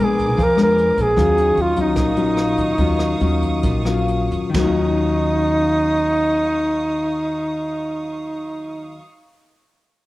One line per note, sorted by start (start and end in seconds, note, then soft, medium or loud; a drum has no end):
0.00 0.38 A#1 medium
0.00 0.37 A#2 medium
0.00 0.38 G#3 medium
0.00 0.38 B3 medium
0.00 0.38 D4 medium
0.00 0.45 G#4 medium
0.00 1.17 A#4 medium
0.00 1.17 G#5 medium
0.00 1.17 D6 medium
0.19 kick soft
0.19 closed hi-hat soft
0.37 0.94 F2 medium
0.37 1.15 F3 medium
0.37 kick medium
0.37 closed hi-hat medium
0.43 0.61 A#4 medium
0.56 1.13 G#3 medium
0.56 1.14 B3 medium
0.56 1.14 D4 medium
0.56 cross-stick medium
0.56 closed hi-hat soft
0.63 1.03 A#4 loud
0.78 closed hi-hat soft
0.97 1.16 A#1 medium
0.97 kick soft
0.97 closed hi-hat soft
1.02 1.63 G#4 medium
1.16 1.54 D#2 medium
1.16 1.95 D#3 medium
1.16 1.73 F#3 medium
1.16 1.74 C#4 medium
1.16 1.74 F4 medium
1.16 4.51 F5 medium
1.16 4.52 C#6 medium
1.16 4.52 D#6 medium
1.16 kick medium
1.16 cross-stick medium
1.16 closed hi-hat medium
1.37 closed hi-hat soft
1.57 1.96 D#2 medium
1.57 closed hi-hat soft
1.62 1.79 F4 medium
1.76 2.14 F#3 medium
1.76 2.14 C#4 medium
1.76 2.14 F4 medium
1.76 kick soft
1.76 closed hi-hat soft
1.81 4.06 D#4 medium
1.96 2.54 A#1 medium
1.96 2.76 A#2 medium
1.96 kick medium
1.96 cross-stick medium
1.96 closed hi-hat medium
2.16 2.75 F#3 soft
2.16 2.75 C#4 medium
2.16 2.76 F4 medium
2.16 closed hi-hat soft
2.37 cross-stick medium
2.37 closed hi-hat soft
2.57 2.77 D#2 medium
2.57 kick soft
2.57 closed hi-hat soft
2.78 3.18 D#2 medium
2.78 3.62 D#3 medium
2.78 3.18 F#3 medium
2.78 3.18 C#4 medium
2.78 3.18 F4 medium
2.78 kick medium
2.78 closed hi-hat medium
2.99 cross-stick medium
2.99 closed hi-hat soft
3.20 3.65 D#2 medium
3.20 3.82 F#3 medium
3.20 3.82 C#4 soft
3.20 3.83 F4 medium
3.20 closed hi-hat soft
3.42 kick soft
3.42 closed hi-hat soft
3.63 4.27 A#1 medium
3.63 4.52 A#2 medium
3.63 kick medium
3.63 closed hi-hat medium
3.85 4.50 F#3 medium
3.85 4.50 C#4 medium
3.85 4.50 F4 medium
3.85 cross-stick medium
3.85 closed hi-hat soft
4.08 closed hi-hat soft
4.31 4.52 D#2 medium
4.31 kick soft
4.31 closed hi-hat soft
4.50 8.98 D#3 medium
4.54 8.99 D#2 medium
4.54 9.04 F#3 medium
4.54 9.01 D#4 medium
4.54 9.01 F5 medium
4.54 9.00 C#6 medium
4.54 9.00 D#6 medium
4.54 kick medium
4.54 snare medium
4.54 ride bell medium
4.60 9.09 C#4 medium
4.64 9.13 F4 medium